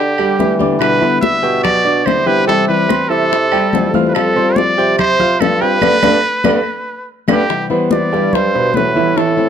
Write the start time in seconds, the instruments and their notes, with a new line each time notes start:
Already playing: bassoon D3, grand piano D4 D5 D6, trumpet G4
0.18 grand piano G3 G4 G5, high bongo, high conga, claves
0.39 nylon-string guitar D3 G3 B3 G4, bassoon E3, high bongo, low bongo, high conga
0.59 nylon-string guitar D3 G3 B3 G4, grand piano D4 D5 D6, high conga
0.79 nylon-string guitar B2 D3 G3 B3 E4, trumpet B4, high bongo, high conga, claves
1.01 nylon-string guitar D3 G3 B3 E4, grand piano B3 B4 B5, high conga
1.21 nylon-string guitar E4, trumpet E5, high bongo, high conga
1.43 bassoon B2, grand piano G4 G5 G6, high bongo, high conga
1.63 trumpet D5, muted nylon-string guitar stroke, high bongo, high conga, low conga, claves
1.85 grand piano D4 D5 D6, high bongo, high conga
2.05 bassoon C3, nylon-string guitar D3 G3 B3 E4, trumpet C5, high bongo, low bongo, high conga, claves
2.26 nylon-string guitar D3 G3 B3 E4, grand piano G4 G5 G6, trumpet B4, high conga
2.47 nylon-string guitar C3 E3 G3 C4 E4, grand piano G3 G4 G5, trumpet A4, high bongo, high conga
2.68 nylon-string guitar E3 G3 C4 E4, trumpet B4, high conga
2.89 nylon-string guitar E3 G3, grand piano C4 C5 C6, high bongo, high conga, claves
3.09 bassoon C3, grand piano E4 E5 E6, trumpet A4, high bongo, high conga
3.32 muted nylon-string guitar stroke, high bongo, high conga
3.52 grand piano G3 G4 G5, high bongo, high conga, claves
3.73 bassoon F2, nylon-string guitar E3 G3 C4 E4, high bongo, low bongo, high conga
3.94 nylon-string guitar E3 G3 C4 E4, grand piano F4 F5 F6, high conga
4.08 trumpet B4
4.14 nylon-string guitar F3 G3 C4 F4, trumpet A4, high bongo, high conga, claves
4.36 nylon-string guitar G3 C4 F4, grand piano C4 C5 C6, high conga
4.56 nylon-string guitar F3 G3 C4 F4, trumpet D5, high bongo, high conga
4.77 bassoon C3, grand piano G4 G5 G6, high bongo, high conga
4.99 trumpet C5, muted nylon-string guitar stroke, high bongo, high conga, low conga, claves
5.19 grand piano F4 F5 F6, high bongo, high conga, low conga
5.40 bassoon G2, nylon-string guitar F3 G3 C4 F4, trumpet A4, high bongo, low bongo, high conga, claves
5.61 nylon-string guitar G3 C4 F4, grand piano G4 G5 G6, trumpet B4, high conga
5.81 bassoon G2, nylon-string guitar A3 B3 D4, grand piano A4 B4 D5, low bongo, high conga, claves
6.03 bassoon G2, nylon-string guitar A3 B3 D4, grand piano A4 B4 D5, low bongo, high conga, claves
6.44 bassoon G2, nylon-string guitar A3 B3 D4, grand piano A4 B4 D5, low bongo, high conga, claves
7.28 bassoon G2, nylon-string guitar A3 B3 D4, trumpet G4, grand piano A4 B4 D5, low bongo, high conga, claves
7.49 nylon-string guitar C3 E3 G3 B3 E4, high bongo, high conga
7.70 nylon-string guitar E3 G3 B3 E4, grand piano B3 B4 C5, high conga
7.91 grand piano B3 B4 C5, trumpet D5, high bongo, high conga
8.12 bassoon G2, grand piano G3 G4 G5, high bongo, high conga
8.32 trumpet C5, muted nylon-string guitar stroke, high bongo, high conga, low conga
8.54 grand piano B2 B4 C5, high bongo, high conga
8.74 bassoon A2, nylon-string guitar E3 G3 B3 E4, trumpet B4, high bongo, low bongo, high conga
8.95 grand piano E3 E4 E5, nylon-string guitar E3 G3 B3 E4, high conga
9.16 nylon-string guitar E3 A3 C4 E4, grand piano E3 E4 E5, trumpet A4, high bongo, high conga
9.37 nylon-string guitar A3 C4 E4, high conga